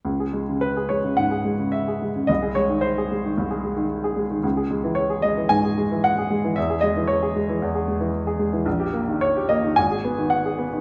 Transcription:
<<
  \new Staff \with { instrumentName = "Grand piano" } { \time 4/4 \key cis \minor \tempo 4 = 111 r4 b'8 cis''8 fis''4 e''4 | dis''8 cis''8 bis'2. | r4 cis''8 dis''8 gis''4 fis''4 | e''8 dis''8 cis''2. |
r4 cis''8 dis''8 gis''4 fis''4 | }
  \new Staff \with { instrumentName = "Grand piano" } { \clef bass \time 4/4 \key cis \minor cis,16 gis'16 gis16 cis8 gis'16 gis16 cis16 gis,16 gis'16 gis16 cis8 gis'16 gis16 cis16 | bis,,16 gis'16 gis16 dis8 gis'16 gis16 dis16 bis,,16 gis'16 gis16 dis8 gis'16 gis16 dis16 | cis,16 gis'16 gis16 e8 gis'16 gis16 e16 gis,16 gis'16 gis16 e8 gis'16 gis16 e16 | e,16 gis'16 gis16 e8 gis'16 gis16 e16 e,16 gis'16 gis16 e8 gis'16 gis16 e16 |
ais,,16 g'16 ais16 dis8 g'16 ais16 dis16 gis,,16 gis'16 b16 dis8 gis'16 b16 dis16 | }
>>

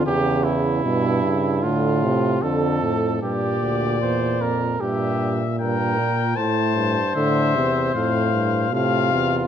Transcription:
<<
  \new Staff \with { instrumentName = "Cornet" } { \time 4/4 \key g \dorian \tempo 4 = 76 r1 | d''2 e''4 g''4 | a''4 e''4 f''4 f''4 | }
  \new Staff \with { instrumentName = "Trumpet" } { \time 4/4 \key g \dorian g'8 e'4. f'4 a'4 | g'4 c''8 bes'8 g'4 bes'4 | c''2. f'4 | }
  \new Staff \with { instrumentName = "Trombone" } { \clef bass \time 4/4 \key g \dorian cis4 b,8 cis8 d8 c8 d8 a,8 | bes,2 bes,2 | a,4 d8 c8 a,4 c4 | }
  \new Staff \with { instrumentName = "Euphonium" } { \clef bass \time 4/4 \key g \dorian e,4 g,4 a,4 f,4 | g,8 d,8 e,8 f,8 g,4 g,8 bes,8 | a,8 g,8 a,8 e,8 f,8 g,8 a,8 e,8 | }
>>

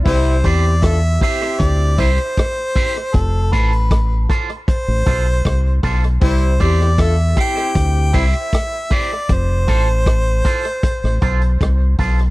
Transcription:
<<
  \new Staff \with { instrumentName = "Harmonica" } { \time 4/4 \key c \major \tempo 4 = 78 c''8 d''8 e''8 e''8 d''8 c''4. | a'8 b'4 r8 c''4. r8 | c''8 d''8 e''8 g''4 e''4 d''8 | c''2.~ c''8 r8 | }
  \new Staff \with { instrumentName = "Clean electric guitar" } { \time 4/4 \key c \major r8 <e' g' c''>16 r8. <e' g' c''>16 <e' g' c''>16 r8 <e' g' c''>16 r8. <e' g' c''>16 r16 | r8 <f' a' c''>16 r8. <f' a' c''>16 r8. <f' a' c''>16 r8. <f' a' c''>16 r16 | r8 <e' g' c''>16 r8. <e' g' c''>16 <e' g' c''>16 r8 <e' g' c''>16 r8. <e' g' c''>16 r16 | r8 <f' a' c''>16 r8. <f' a' c''>16 r8. <f' a' c''>16 r8. <f' a' c''>16 r16 | }
  \new Staff \with { instrumentName = "Horn section" } { \time 4/4 \key c \major <g c' e'>8 <c' e' g'>8 <d' f' a'>16 r16 <c' e' g'>4 <g c' e'>16 r4 r16 | r1 | <g c' e'>8 <c' e' g'>8 <d' f' a'>16 r16 <c' e' g'>4 <g c' e'>16 r4 r16 | r1 | }
  \new Staff \with { instrumentName = "Fingered electric bass" } { \clef bass \time 4/4 \key c \major c,8 e,4 r8 d,8 c,16 r4 r16 | f,,8 a,,4 r8. a,,16 b,,8 c,8 b,,8 | c,8 e,4 r8 d,8 c,16 r4 r16 | f,,8 a,,4 r8. a,,16 b,,8 c,8 b,,8 | }
  \new DrumStaff \with { instrumentName = "Drums" } \drummode { \time 4/4 <cymc bd>8 <hh bd>16 hh16 <hh bd ss>8 <hh bd>16 hh16 <hh bd>8 <hh bd>16 hh16 <hh bd ss>8 <hho bd>16 hh16 | <hh bd>8 <hh bd>16 hh16 <hh bd ss>8 <hh bd>16 hh16 <hh bd>8 <hh bd>16 hh16 <hh bd ss>8 <hho bd>16 hh16 | <hh bd>8 <hh bd>16 <hh ss>16 <hh bd ss>8 <hh bd>16 hh16 <hh bd>8 <hh bd>16 hh16 <hh bd ss>8 <hho bd>16 hh16 | <hh bd>8 <hh bd>16 hh16 <hh bd ss>8 <hh bd>16 hh16 <hh bd>16 ss16 <hh bd>16 hh16 <hh bd ss>8 <hho bd>16 hh16 | }
>>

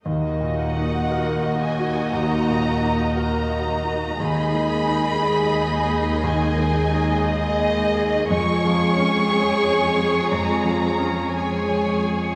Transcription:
<<
  \new Staff \with { instrumentName = "Violin section" } { \time 4/4 \key ees \minor \tempo 4 = 59 r8 ges''4 aes''8 bes''4 bes''4 | ces'''2 aes''4 ees''4 | des'''2 bes''4 aes''4 | }
  \new Staff \with { instrumentName = "Violin section" } { \time 4/4 \key ees \minor <ges' ees''>1 | <aes' ees''>1 | <aes' des''>2. <aes' des''>4 | }
  \new Staff \with { instrumentName = "Grand piano" } { \time 4/4 \key ees \minor \tuplet 3/2 { ees,8 bes,8 ees'8 bes'8 ees''8 ges'8 ees,8 bes,8 ees'8 bes'8 ees''8 ges'8 } | \tuplet 3/2 { ees,8 ees8 ees'8 aes'8 ees''8 aes'8 ees,8 ees8 ees'8 aes'8 ees''8 aes'8 } | \tuplet 3/2 { f,8 f8 des'8 aes'8 des''8 aes'8 f,8 f8 des'8 aes'8 des''8 aes'8 } | }
  \new Staff \with { instrumentName = "Harp" } { \time 4/4 \key ees \minor ees8 bes'8 ges'8 bes8 ees'8 bes'8 ges'8 bes8 | ees8 aes'8 ees'8 aes8 ees'8 aes'8 ees'8 aes8 | f,8 aes'8 des'8 f8 f,8 aes'8 des'8 f8 | }
  \new Staff \with { instrumentName = "Viola section" } { \time 4/4 \key ees \minor <bes ees'>1 | <aes ees'>1 | <aes aes'>2. <aes aes'>4 | }
  \new Staff \with { instrumentName = "Cello section" } { \clef bass \time 4/4 \key ees \minor ees,1 | ees,1 | f,1 | }
>>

